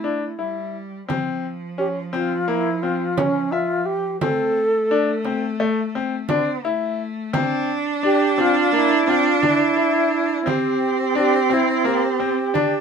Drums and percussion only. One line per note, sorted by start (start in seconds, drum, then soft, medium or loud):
1.10 frame drum medium
2.14 frame drum soft
3.18 frame drum medium
4.21 frame drum medium
5.25 frame drum soft
6.29 frame drum medium
7.34 frame drum medium
8.38 frame drum soft
9.43 frame drum medium
10.47 frame drum medium
11.51 frame drum soft
11.86 frame drum soft
12.21 frame drum soft
12.55 frame drum medium